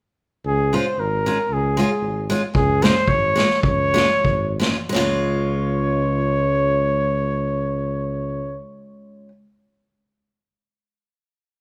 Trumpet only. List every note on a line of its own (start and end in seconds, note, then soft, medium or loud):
0.47 0.77 G#4 medium
0.75 1.02 C5 medium
1.00 1.55 A#4 medium
1.53 2.32 G#4 medium
2.56 2.85 G#4 medium
2.83 3.09 C5 medium
3.08 3.63 C#5 medium
3.63 4.57 C#5 medium
4.94 8.61 C#5 medium